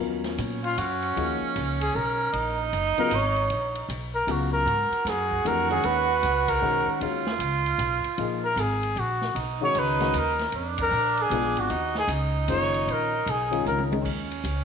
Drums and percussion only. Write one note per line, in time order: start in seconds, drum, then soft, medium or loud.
0.24 snare soft
0.24 ride soft
0.38 hi-hat pedal medium
0.38 ride medium
0.64 ride soft
0.78 hi-hat pedal soft
0.78 ride medium
1.02 ride soft
1.17 ride soft
1.56 hi-hat pedal soft
1.56 ride medium
1.81 ride medium
2.33 ride medium
2.73 hi-hat pedal soft
2.73 ride medium
2.98 ride soft
3.11 hi-hat pedal medium
3.11 ride medium
3.36 ride soft
3.50 ride soft
3.75 ride soft
3.90 hi-hat pedal medium
3.90 ride medium
4.28 hi-hat pedal medium
4.28 ride medium
4.67 ride soft
4.92 ride soft
5.07 snare soft
5.07 hi-hat pedal medium
5.07 ride medium
5.31 kick soft
5.46 hi-hat pedal soft
5.46 ride medium
5.71 ride soft
5.83 ride medium
6.23 hi-hat pedal medium
6.23 ride medium
6.48 kick medium
6.48 ride medium
7.01 ride medium
7.27 snare medium
7.40 hi-hat pedal soft
7.40 ride medium
7.66 ride soft
7.79 hi-hat pedal medium
7.79 ride medium
8.04 ride soft
8.18 ride soft
8.57 hi-hat pedal medium
8.57 ride medium
8.83 ride soft
8.97 ride medium
9.22 snare soft
9.36 ride medium
9.75 hi-hat pedal medium
9.75 ride medium
10.00 snare soft
10.00 ride soft
10.14 hi-hat pedal medium
10.14 ride medium
10.39 snare soft
10.39 ride soft
10.52 ride medium
10.78 kick medium
10.78 ride medium
10.92 hi-hat pedal medium
11.17 ride soft
11.31 hi-hat pedal soft
11.31 ride medium
11.57 ride soft
11.70 ride medium
11.95 snare soft
12.08 hi-hat pedal medium
12.08 ride medium
12.48 hi-hat pedal soft
12.48 ride medium
12.74 ride soft
12.88 ride soft
13.27 hi-hat pedal soft
13.27 ride medium
13.53 ride soft
13.66 hi-hat pedal medium
13.66 high tom soft
13.79 high tom soft
13.92 high tom medium
14.05 kick medium
14.05 crash medium
14.31 ride soft
14.45 hi-hat pedal medium
14.45 ride medium